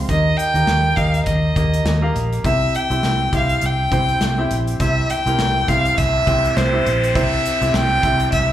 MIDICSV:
0, 0, Header, 1, 6, 480
1, 0, Start_track
1, 0, Tempo, 588235
1, 75, Time_signature, 4, 2, 24, 8
1, 6957, End_track
2, 0, Start_track
2, 0, Title_t, "Violin"
2, 0, Program_c, 0, 40
2, 85, Note_on_c, 0, 75, 89
2, 308, Note_on_c, 0, 79, 104
2, 320, Note_off_c, 0, 75, 0
2, 788, Note_on_c, 0, 77, 92
2, 800, Note_off_c, 0, 79, 0
2, 1021, Note_off_c, 0, 77, 0
2, 1026, Note_on_c, 0, 75, 77
2, 1719, Note_off_c, 0, 75, 0
2, 2005, Note_on_c, 0, 76, 100
2, 2247, Note_on_c, 0, 79, 102
2, 2260, Note_off_c, 0, 76, 0
2, 2723, Note_off_c, 0, 79, 0
2, 2745, Note_on_c, 0, 77, 88
2, 2985, Note_on_c, 0, 79, 92
2, 2997, Note_off_c, 0, 77, 0
2, 3692, Note_off_c, 0, 79, 0
2, 3925, Note_on_c, 0, 76, 92
2, 4163, Note_on_c, 0, 79, 96
2, 4175, Note_off_c, 0, 76, 0
2, 4639, Note_on_c, 0, 77, 103
2, 4651, Note_off_c, 0, 79, 0
2, 4881, Note_on_c, 0, 76, 100
2, 4894, Note_off_c, 0, 77, 0
2, 5360, Note_on_c, 0, 72, 96
2, 5372, Note_off_c, 0, 76, 0
2, 5838, Note_on_c, 0, 76, 98
2, 5850, Note_off_c, 0, 72, 0
2, 6324, Note_on_c, 0, 79, 102
2, 6336, Note_off_c, 0, 76, 0
2, 6788, Note_off_c, 0, 79, 0
2, 6793, Note_on_c, 0, 76, 91
2, 6957, Note_off_c, 0, 76, 0
2, 6957, End_track
3, 0, Start_track
3, 0, Title_t, "Grand piano"
3, 0, Program_c, 1, 0
3, 0, Control_c, 1, 64, 127
3, 0, Note_on_c, 1, 65, 69
3, 0, Note_on_c, 1, 68, 73
3, 0, Note_on_c, 1, 70, 79
3, 71, Note_on_c, 1, 58, 60
3, 72, Note_on_c, 1, 63, 59
3, 74, Note_on_c, 1, 51, 55
3, 78, Note_on_c, 1, 67, 55
3, 80, Note_on_c, 1, 75, 76
3, 87, Control_c, 1, 64, 0
3, 91, Note_off_c, 1, 65, 0
3, 93, Note_off_c, 1, 68, 0
3, 95, Note_off_c, 1, 70, 0
3, 234, Control_c, 1, 64, 127
3, 378, Note_off_c, 1, 58, 0
3, 378, Note_off_c, 1, 63, 0
3, 381, Note_off_c, 1, 67, 0
3, 382, Note_off_c, 1, 75, 0
3, 448, Note_on_c, 1, 58, 59
3, 450, Note_on_c, 1, 63, 56
3, 453, Note_on_c, 1, 75, 68
3, 454, Note_on_c, 1, 67, 54
3, 740, Note_off_c, 1, 58, 0
3, 741, Note_off_c, 1, 63, 0
3, 742, Note_off_c, 1, 75, 0
3, 743, Note_off_c, 1, 67, 0
3, 762, Note_off_c, 1, 51, 0
3, 787, Note_on_c, 1, 58, 64
3, 789, Note_on_c, 1, 63, 56
3, 792, Note_on_c, 1, 67, 59
3, 795, Note_on_c, 1, 75, 66
3, 1198, Note_off_c, 1, 58, 0
3, 1199, Note_off_c, 1, 63, 0
3, 1201, Note_off_c, 1, 67, 0
3, 1202, Note_off_c, 1, 75, 0
3, 1273, Note_on_c, 1, 58, 73
3, 1274, Note_on_c, 1, 63, 58
3, 1278, Note_on_c, 1, 67, 61
3, 1279, Note_on_c, 1, 75, 69
3, 1579, Note_off_c, 1, 58, 0
3, 1580, Note_off_c, 1, 63, 0
3, 1582, Note_off_c, 1, 67, 0
3, 1582, Note_off_c, 1, 75, 0
3, 1645, Note_on_c, 1, 58, 81
3, 1649, Note_on_c, 1, 67, 67
3, 1650, Note_on_c, 1, 63, 60
3, 1652, Note_on_c, 1, 77, 81
3, 1938, Note_off_c, 1, 58, 0
3, 1941, Note_off_c, 1, 63, 0
3, 1941, Note_off_c, 1, 67, 0
3, 1942, Note_off_c, 1, 77, 0
3, 1992, Note_on_c, 1, 60, 57
3, 1995, Note_on_c, 1, 64, 54
3, 1998, Note_on_c, 1, 48, 58
3, 1998, Note_on_c, 1, 67, 58
3, 2001, Note_on_c, 1, 76, 70
3, 2007, Control_c, 1, 64, 0
3, 2132, Control_c, 1, 64, 127
3, 2299, Note_off_c, 1, 60, 0
3, 2300, Note_off_c, 1, 64, 0
3, 2302, Note_off_c, 1, 67, 0
3, 2303, Note_off_c, 1, 76, 0
3, 2366, Note_on_c, 1, 60, 69
3, 2368, Note_on_c, 1, 64, 58
3, 2372, Note_on_c, 1, 67, 63
3, 2375, Note_on_c, 1, 76, 71
3, 2659, Note_off_c, 1, 60, 0
3, 2660, Note_off_c, 1, 64, 0
3, 2662, Note_off_c, 1, 67, 0
3, 2664, Note_off_c, 1, 76, 0
3, 2685, Note_off_c, 1, 48, 0
3, 2712, Note_on_c, 1, 60, 65
3, 2714, Note_on_c, 1, 64, 61
3, 2717, Note_on_c, 1, 67, 61
3, 2720, Note_on_c, 1, 76, 68
3, 3122, Note_off_c, 1, 60, 0
3, 3122, Note_off_c, 1, 64, 0
3, 3124, Note_off_c, 1, 67, 0
3, 3125, Note_off_c, 1, 76, 0
3, 3194, Note_on_c, 1, 60, 61
3, 3195, Note_on_c, 1, 64, 59
3, 3197, Note_on_c, 1, 67, 63
3, 3203, Note_on_c, 1, 72, 80
3, 3500, Note_off_c, 1, 60, 0
3, 3501, Note_off_c, 1, 64, 0
3, 3502, Note_off_c, 1, 67, 0
3, 3505, Note_off_c, 1, 72, 0
3, 3574, Note_on_c, 1, 60, 77
3, 3574, Note_on_c, 1, 64, 69
3, 3578, Note_on_c, 1, 67, 65
3, 3581, Note_on_c, 1, 76, 81
3, 3864, Note_off_c, 1, 60, 0
3, 3864, Note_off_c, 1, 64, 0
3, 3866, Note_off_c, 1, 67, 0
3, 3867, Note_off_c, 1, 76, 0
3, 3917, Note_on_c, 1, 60, 67
3, 3921, Note_on_c, 1, 64, 61
3, 3922, Note_on_c, 1, 48, 54
3, 3922, Note_on_c, 1, 67, 59
3, 3925, Note_on_c, 1, 76, 76
3, 4222, Note_off_c, 1, 60, 0
3, 4224, Note_off_c, 1, 64, 0
3, 4225, Note_off_c, 1, 67, 0
3, 4226, Note_off_c, 1, 76, 0
3, 4295, Note_on_c, 1, 60, 68
3, 4298, Note_on_c, 1, 64, 62
3, 4300, Note_on_c, 1, 67, 66
3, 4304, Note_on_c, 1, 70, 82
3, 4584, Note_off_c, 1, 60, 0
3, 4586, Note_off_c, 1, 64, 0
3, 4587, Note_off_c, 1, 67, 0
3, 4589, Note_off_c, 1, 70, 0
3, 4607, Note_off_c, 1, 48, 0
3, 4637, Note_on_c, 1, 60, 72
3, 4638, Note_on_c, 1, 67, 66
3, 4639, Note_on_c, 1, 64, 64
3, 4645, Note_on_c, 1, 76, 80
3, 5044, Note_off_c, 1, 60, 0
3, 5045, Note_off_c, 1, 64, 0
3, 5045, Note_off_c, 1, 67, 0
3, 5048, Note_off_c, 1, 76, 0
3, 5114, Note_on_c, 1, 60, 71
3, 5118, Note_on_c, 1, 67, 62
3, 5119, Note_on_c, 1, 64, 60
3, 5123, Note_on_c, 1, 79, 76
3, 5420, Note_off_c, 1, 60, 0
3, 5422, Note_off_c, 1, 67, 0
3, 5423, Note_off_c, 1, 64, 0
3, 5425, Note_off_c, 1, 79, 0
3, 5488, Note_on_c, 1, 60, 64
3, 5488, Note_on_c, 1, 64, 61
3, 5491, Note_on_c, 1, 67, 57
3, 5492, Note_on_c, 1, 76, 76
3, 5781, Note_off_c, 1, 60, 0
3, 5781, Note_off_c, 1, 64, 0
3, 5782, Note_off_c, 1, 67, 0
3, 5783, Note_off_c, 1, 76, 0
3, 5833, Note_on_c, 1, 60, 71
3, 5835, Note_on_c, 1, 48, 59
3, 5836, Note_on_c, 1, 64, 65
3, 5839, Note_on_c, 1, 72, 76
3, 5840, Note_on_c, 1, 67, 64
3, 6140, Note_off_c, 1, 60, 0
3, 6141, Note_off_c, 1, 64, 0
3, 6143, Note_off_c, 1, 67, 0
3, 6143, Note_off_c, 1, 72, 0
3, 6212, Note_on_c, 1, 60, 66
3, 6212, Note_on_c, 1, 64, 66
3, 6216, Note_on_c, 1, 67, 63
3, 6219, Note_on_c, 1, 76, 78
3, 6503, Note_off_c, 1, 60, 0
3, 6503, Note_off_c, 1, 64, 0
3, 6505, Note_off_c, 1, 67, 0
3, 6506, Note_off_c, 1, 76, 0
3, 6524, Note_off_c, 1, 48, 0
3, 6551, Note_on_c, 1, 60, 69
3, 6553, Note_on_c, 1, 64, 63
3, 6558, Note_on_c, 1, 67, 61
3, 6559, Note_on_c, 1, 76, 69
3, 6957, Note_off_c, 1, 60, 0
3, 6957, Note_off_c, 1, 64, 0
3, 6957, Note_off_c, 1, 67, 0
3, 6957, Note_off_c, 1, 76, 0
3, 6957, End_track
4, 0, Start_track
4, 0, Title_t, "Fingered electric bass"
4, 0, Program_c, 2, 33
4, 71, Note_on_c, 2, 39, 76
4, 270, Note_off_c, 2, 39, 0
4, 442, Note_on_c, 2, 39, 82
4, 532, Note_off_c, 2, 39, 0
4, 551, Note_on_c, 2, 39, 91
4, 750, Note_off_c, 2, 39, 0
4, 792, Note_on_c, 2, 39, 85
4, 991, Note_off_c, 2, 39, 0
4, 1031, Note_on_c, 2, 39, 93
4, 1230, Note_off_c, 2, 39, 0
4, 1275, Note_on_c, 2, 39, 94
4, 1472, Note_off_c, 2, 39, 0
4, 1510, Note_on_c, 2, 39, 84
4, 1710, Note_off_c, 2, 39, 0
4, 1752, Note_on_c, 2, 34, 74
4, 1951, Note_off_c, 2, 34, 0
4, 1992, Note_on_c, 2, 36, 78
4, 2191, Note_off_c, 2, 36, 0
4, 2367, Note_on_c, 2, 36, 80
4, 2456, Note_off_c, 2, 36, 0
4, 2476, Note_on_c, 2, 36, 95
4, 2673, Note_off_c, 2, 36, 0
4, 2714, Note_on_c, 2, 36, 91
4, 2912, Note_off_c, 2, 36, 0
4, 2959, Note_on_c, 2, 36, 99
4, 3155, Note_off_c, 2, 36, 0
4, 3194, Note_on_c, 2, 36, 94
4, 3392, Note_off_c, 2, 36, 0
4, 3438, Note_on_c, 2, 36, 81
4, 3635, Note_off_c, 2, 36, 0
4, 3680, Note_on_c, 2, 34, 74
4, 3876, Note_off_c, 2, 34, 0
4, 3916, Note_on_c, 2, 36, 86
4, 4114, Note_off_c, 2, 36, 0
4, 4291, Note_on_c, 2, 36, 81
4, 4378, Note_off_c, 2, 36, 0
4, 4401, Note_on_c, 2, 36, 97
4, 4597, Note_off_c, 2, 36, 0
4, 4636, Note_on_c, 2, 36, 93
4, 4834, Note_off_c, 2, 36, 0
4, 4877, Note_on_c, 2, 36, 98
4, 5075, Note_off_c, 2, 36, 0
4, 5117, Note_on_c, 2, 36, 100
4, 5315, Note_off_c, 2, 36, 0
4, 5358, Note_on_c, 2, 36, 79
4, 5555, Note_off_c, 2, 36, 0
4, 5601, Note_on_c, 2, 34, 82
4, 5838, Note_off_c, 2, 34, 0
4, 5838, Note_on_c, 2, 36, 94
4, 6035, Note_off_c, 2, 36, 0
4, 6212, Note_on_c, 2, 36, 95
4, 6299, Note_off_c, 2, 36, 0
4, 6316, Note_on_c, 2, 36, 94
4, 6514, Note_off_c, 2, 36, 0
4, 6554, Note_on_c, 2, 36, 88
4, 6752, Note_off_c, 2, 36, 0
4, 6793, Note_on_c, 2, 36, 88
4, 6957, Note_off_c, 2, 36, 0
4, 6957, End_track
5, 0, Start_track
5, 0, Title_t, "Noise sweep"
5, 0, Program_c, 3, 103
5, 3918, Note_on_c, 3, 60, 71
5, 6957, Note_off_c, 3, 60, 0
5, 6957, End_track
6, 0, Start_track
6, 0, Title_t, "Drums"
6, 72, Note_on_c, 9, 36, 78
6, 72, Note_on_c, 9, 42, 71
6, 154, Note_off_c, 9, 36, 0
6, 154, Note_off_c, 9, 42, 0
6, 318, Note_on_c, 9, 42, 67
6, 400, Note_off_c, 9, 42, 0
6, 450, Note_on_c, 9, 42, 47
6, 532, Note_off_c, 9, 42, 0
6, 550, Note_on_c, 9, 38, 95
6, 550, Note_on_c, 9, 42, 52
6, 632, Note_off_c, 9, 38, 0
6, 632, Note_off_c, 9, 42, 0
6, 792, Note_on_c, 9, 36, 78
6, 794, Note_on_c, 9, 42, 70
6, 874, Note_off_c, 9, 36, 0
6, 875, Note_off_c, 9, 42, 0
6, 930, Note_on_c, 9, 42, 51
6, 1012, Note_off_c, 9, 42, 0
6, 1029, Note_on_c, 9, 42, 82
6, 1033, Note_on_c, 9, 36, 84
6, 1110, Note_off_c, 9, 42, 0
6, 1115, Note_off_c, 9, 36, 0
6, 1274, Note_on_c, 9, 36, 78
6, 1275, Note_on_c, 9, 42, 61
6, 1356, Note_off_c, 9, 36, 0
6, 1357, Note_off_c, 9, 42, 0
6, 1416, Note_on_c, 9, 42, 50
6, 1498, Note_off_c, 9, 42, 0
6, 1515, Note_on_c, 9, 38, 96
6, 1515, Note_on_c, 9, 42, 71
6, 1596, Note_off_c, 9, 42, 0
6, 1597, Note_off_c, 9, 38, 0
6, 1760, Note_on_c, 9, 42, 74
6, 1842, Note_off_c, 9, 42, 0
6, 1898, Note_on_c, 9, 42, 44
6, 1979, Note_off_c, 9, 42, 0
6, 1995, Note_on_c, 9, 36, 98
6, 1995, Note_on_c, 9, 42, 80
6, 2076, Note_off_c, 9, 36, 0
6, 2076, Note_off_c, 9, 42, 0
6, 2240, Note_on_c, 9, 42, 57
6, 2322, Note_off_c, 9, 42, 0
6, 2374, Note_on_c, 9, 42, 42
6, 2456, Note_off_c, 9, 42, 0
6, 2475, Note_on_c, 9, 38, 88
6, 2475, Note_on_c, 9, 42, 53
6, 2556, Note_off_c, 9, 38, 0
6, 2557, Note_off_c, 9, 42, 0
6, 2716, Note_on_c, 9, 36, 88
6, 2716, Note_on_c, 9, 42, 79
6, 2797, Note_off_c, 9, 36, 0
6, 2798, Note_off_c, 9, 42, 0
6, 2851, Note_on_c, 9, 42, 49
6, 2932, Note_off_c, 9, 42, 0
6, 2949, Note_on_c, 9, 42, 76
6, 3031, Note_off_c, 9, 42, 0
6, 3196, Note_on_c, 9, 36, 84
6, 3198, Note_on_c, 9, 42, 59
6, 3278, Note_off_c, 9, 36, 0
6, 3279, Note_off_c, 9, 42, 0
6, 3334, Note_on_c, 9, 42, 45
6, 3416, Note_off_c, 9, 42, 0
6, 3434, Note_on_c, 9, 42, 68
6, 3435, Note_on_c, 9, 38, 80
6, 3516, Note_off_c, 9, 38, 0
6, 3516, Note_off_c, 9, 42, 0
6, 3678, Note_on_c, 9, 42, 75
6, 3760, Note_off_c, 9, 42, 0
6, 3815, Note_on_c, 9, 42, 46
6, 3896, Note_off_c, 9, 42, 0
6, 3916, Note_on_c, 9, 42, 84
6, 3917, Note_on_c, 9, 36, 87
6, 3997, Note_off_c, 9, 42, 0
6, 3999, Note_off_c, 9, 36, 0
6, 4160, Note_on_c, 9, 42, 73
6, 4242, Note_off_c, 9, 42, 0
6, 4297, Note_on_c, 9, 42, 45
6, 4378, Note_off_c, 9, 42, 0
6, 4396, Note_on_c, 9, 38, 99
6, 4396, Note_on_c, 9, 42, 54
6, 4477, Note_off_c, 9, 38, 0
6, 4478, Note_off_c, 9, 42, 0
6, 4638, Note_on_c, 9, 36, 81
6, 4638, Note_on_c, 9, 42, 82
6, 4719, Note_off_c, 9, 36, 0
6, 4720, Note_off_c, 9, 42, 0
6, 4776, Note_on_c, 9, 42, 49
6, 4858, Note_off_c, 9, 42, 0
6, 4878, Note_on_c, 9, 42, 89
6, 4880, Note_on_c, 9, 36, 84
6, 4960, Note_off_c, 9, 42, 0
6, 4961, Note_off_c, 9, 36, 0
6, 5117, Note_on_c, 9, 42, 57
6, 5118, Note_on_c, 9, 36, 85
6, 5199, Note_off_c, 9, 42, 0
6, 5200, Note_off_c, 9, 36, 0
6, 5259, Note_on_c, 9, 42, 46
6, 5341, Note_off_c, 9, 42, 0
6, 5359, Note_on_c, 9, 38, 95
6, 5359, Note_on_c, 9, 42, 65
6, 5441, Note_off_c, 9, 38, 0
6, 5441, Note_off_c, 9, 42, 0
6, 5602, Note_on_c, 9, 42, 78
6, 5683, Note_off_c, 9, 42, 0
6, 5741, Note_on_c, 9, 42, 52
6, 5823, Note_off_c, 9, 42, 0
6, 5838, Note_on_c, 9, 36, 98
6, 5843, Note_on_c, 9, 42, 74
6, 5920, Note_off_c, 9, 36, 0
6, 5925, Note_off_c, 9, 42, 0
6, 6084, Note_on_c, 9, 42, 65
6, 6165, Note_off_c, 9, 42, 0
6, 6214, Note_on_c, 9, 42, 45
6, 6296, Note_off_c, 9, 42, 0
6, 6317, Note_on_c, 9, 38, 101
6, 6317, Note_on_c, 9, 42, 47
6, 6398, Note_off_c, 9, 38, 0
6, 6399, Note_off_c, 9, 42, 0
6, 6555, Note_on_c, 9, 36, 88
6, 6555, Note_on_c, 9, 42, 81
6, 6636, Note_off_c, 9, 42, 0
6, 6637, Note_off_c, 9, 36, 0
6, 6689, Note_on_c, 9, 42, 55
6, 6771, Note_off_c, 9, 42, 0
6, 6791, Note_on_c, 9, 42, 87
6, 6795, Note_on_c, 9, 36, 86
6, 6872, Note_off_c, 9, 42, 0
6, 6877, Note_off_c, 9, 36, 0
6, 6957, End_track
0, 0, End_of_file